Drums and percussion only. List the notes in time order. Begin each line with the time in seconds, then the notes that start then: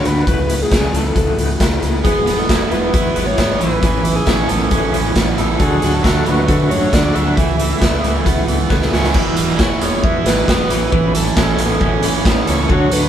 0.05 closed hi-hat
0.27 kick, closed hi-hat
0.49 closed hi-hat
0.72 kick, snare, closed hi-hat
0.94 closed hi-hat
1.16 kick, closed hi-hat
1.38 closed hi-hat
1.60 kick, snare, closed hi-hat
1.82 closed hi-hat
2.05 kick, closed hi-hat
2.27 snare, closed hi-hat
2.49 kick, snare, closed hi-hat
2.71 closed hi-hat
2.94 kick, closed hi-hat
3.16 closed hi-hat
3.38 kick, snare, closed hi-hat
3.61 closed hi-hat
3.83 kick, closed hi-hat
4.05 closed hi-hat
4.27 kick, snare, closed hi-hat
4.49 closed hi-hat
4.71 kick, closed hi-hat
4.94 closed hi-hat
5.16 kick, snare, closed hi-hat
5.38 closed hi-hat
5.60 kick, closed hi-hat
5.82 snare, closed hi-hat
6.04 kick, snare, closed hi-hat
6.26 closed hi-hat
6.48 kick, closed hi-hat
6.71 closed hi-hat
6.93 kick, snare, closed hi-hat
7.16 closed hi-hat
7.37 kick, closed hi-hat
7.59 closed hi-hat
7.81 kick, snare, closed hi-hat
8.04 closed hi-hat
8.26 kick, closed hi-hat
8.48 closed hi-hat
8.70 kick, snare
8.82 snare
8.93 snare
9.04 snare
9.14 kick, crash
9.37 closed hi-hat
9.59 kick, snare
9.81 closed hi-hat
10.04 kick
10.26 snare, closed hi-hat
10.48 kick, snare
10.70 closed hi-hat
10.92 kick
11.15 closed hi-hat
11.37 kick, snare
11.59 closed hi-hat
11.81 kick
12.03 closed hi-hat
12.25 kick, snare
12.47 closed hi-hat
12.70 kick
12.92 closed hi-hat